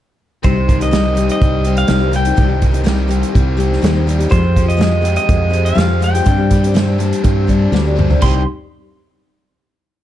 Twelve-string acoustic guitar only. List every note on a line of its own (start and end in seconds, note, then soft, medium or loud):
0.43 0.56 C3 medium
0.43 0.56 G3 medium
0.43 0.56 C4 medium
0.43 0.56 D#4 medium
0.43 0.55 G4 medium
0.56 0.80 C4 soft
0.56 0.79 D#4 soft
0.56 0.79 G4 soft
0.80 0.90 C4 soft
0.80 0.91 D#4 soft
0.80 0.91 G4 soft
0.91 1.04 C3 medium
0.91 1.04 G3 medium
0.91 1.04 C4 medium
0.91 1.04 D#4 medium
0.91 1.03 G4 medium
1.04 1.14 C4 soft
1.04 1.15 D#4 soft
1.04 1.16 G4 soft
1.14 1.65 G3 medium
1.14 1.65 C4 medium
1.14 1.64 D#4 medium
1.14 1.66 G4 medium
1.65 1.87 G3 soft
1.65 1.88 C4 soft
1.65 1.88 D#4 soft
1.65 1.88 G4 soft
1.87 2.00 C3 medium
1.87 2.00 G3 medium
1.87 2.01 C4 medium
1.87 2.01 D#4 medium
1.87 1.99 G4 medium
2.00 2.11 C4 soft
2.00 2.13 D#4 soft
2.00 2.12 G4 soft
2.12 2.24 G3 soft
2.12 2.25 C4 medium
2.12 2.25 D#4 medium
2.12 2.24 G4 medium
2.25 2.36 C4 soft
2.25 2.36 D#4 soft
2.25 2.37 G4 soft
2.36 2.49 C3 medium
2.36 2.49 G3 medium
2.36 2.49 C4 medium
2.36 2.47 D#4 medium
2.36 2.46 G4 medium
2.48 2.72 C4 soft
2.48 2.72 D#4 soft
2.48 2.70 G4 soft
2.71 2.84 C4 soft
2.71 2.84 D#4 soft
2.71 2.83 G4 medium
2.84 3.09 C3 medium
2.84 3.07 G3 medium
2.84 3.07 C4 medium
2.84 3.08 D#4 medium
2.84 3.08 G4 medium
3.08 3.56 G3 medium
3.08 3.57 C4 medium
3.08 3.57 D#4 medium
3.08 3.57 G4 medium
3.57 3.80 G3 medium
3.57 3.81 C4 medium
3.57 3.81 D#4 medium
3.57 3.82 G4 medium
3.81 3.94 C3 medium
3.81 3.95 G3 medium
3.81 3.95 C4 medium
3.81 3.94 D#4 medium
3.81 3.92 G4 medium
3.94 4.06 C4 soft
3.94 4.06 D#4 medium
3.94 4.07 G4 medium
4.07 4.19 G3 medium
4.07 4.19 C4 medium
4.07 4.18 D#4 medium
4.07 4.17 G4 medium
4.18 4.29 C4 soft
4.18 4.30 D#4 soft
4.18 4.29 G4 soft
4.29 4.43 F3 medium
4.29 4.43 G#3 medium
4.29 4.43 C4 medium
4.29 4.42 F4 medium
4.29 4.41 G4 medium
4.43 4.65 C4 soft
4.43 4.65 F4 soft
4.43 4.63 G4 soft
4.64 4.77 C4 soft
4.64 4.77 F4 soft
4.64 4.78 G4 soft
4.77 4.91 F3 medium
4.77 4.91 G#3 medium
4.77 4.89 C4 medium
4.77 4.87 F4 medium
4.77 4.87 G4 medium
4.88 5.01 C4 soft
4.88 5.02 F4 soft
4.88 5.01 G4 soft
5.01 5.48 G#3 soft
5.01 5.50 C4 medium
5.01 5.50 F4 medium
5.01 5.52 G4 medium
5.49 5.74 G#3 medium
5.49 5.74 C4 medium
5.49 5.74 F4 medium
5.49 5.75 G4 medium
5.75 5.88 F3 medium
5.75 5.89 G#3 medium
5.75 5.89 C4 medium
5.75 5.89 F4 medium
5.75 5.86 G4 medium
5.88 5.99 C4 soft
5.88 6.00 F4 soft
5.88 6.00 G4 medium
6.00 6.13 G#3 soft
6.00 6.14 C4 soft
6.00 6.13 F4 medium
6.00 6.13 G4 medium
6.14 6.25 C4 soft
6.14 6.25 F4 soft
6.14 6.24 G4 soft
6.24 6.38 G2 medium
6.24 6.38 D3 medium
6.24 6.38 G3 medium
6.24 6.38 C4 medium
6.24 6.37 D4 medium
6.24 6.37 G4 medium
6.38 6.64 G3 soft
6.38 6.63 C4 soft
6.38 6.63 D4 soft
6.38 6.62 G4 soft
6.63 6.73 G3 soft
6.63 6.73 C4 soft
6.63 6.74 D4 medium
6.63 6.74 G4 medium
6.74 6.87 G2 medium
6.74 6.87 D3 medium
6.74 6.87 G3 medium
6.74 6.87 C4 medium
6.74 6.86 D4 medium
6.74 6.86 G4 medium
6.87 6.97 G3 soft
6.87 6.98 C4 soft
6.87 6.99 D4 soft
6.87 7.00 G4 soft
6.98 7.46 G3 medium
6.98 7.47 C4 medium
6.98 7.47 D4 medium
6.98 7.48 G4 medium
7.47 7.72 G3 medium
7.47 7.72 C4 medium
7.47 7.73 D4 medium
7.47 7.73 G4 medium
7.72 7.85 G2 medium
7.72 7.85 D3 medium
7.72 7.85 G3 medium
7.72 7.85 C4 medium
7.72 7.86 D4 medium
7.72 7.84 G4 medium
7.85 7.96 G3 soft
7.85 7.96 C4 soft
7.85 7.97 D4 medium
7.85 7.98 G4 medium
7.97 8.09 G3 medium
7.97 8.10 C4 medium
7.97 8.09 D4 medium
7.97 8.09 G4 medium
8.10 8.22 G3 soft
8.10 8.22 C4 soft
8.10 8.22 D4 soft
8.10 8.22 G4 medium
8.22 8.42 C3 medium
8.22 8.42 G3 medium
8.22 8.42 C4 medium
8.22 8.43 D#4 medium
8.22 8.43 G4 medium